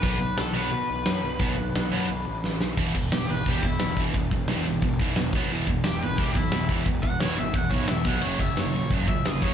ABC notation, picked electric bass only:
X:1
M:4/4
L:1/8
Q:1/4=176
K:Bmix
V:1 name="Picked electric bass" clef=bass
B,,, B,,, B,,,2 B,, B,,, F,, B,,, | B,,, B,,, B,,, F,, B,,, A,,, A,,, B,,, | [K:E] E,,, E,,, E,,, G,,, E,,, B,,, E,,, E,,, | E,,, E,,, E,,, G,,, E,,, B,,, E,,, B,,, |
E,,, E,,, E,,, G,,, E,,, B,,, E,,, E,,, | E,,, E,,, E,,, G,,, E,,, B,,, E,,, B,,, | F,,, F,,, F,,, ^A,,, F,,, C,, F,,, F,,, |]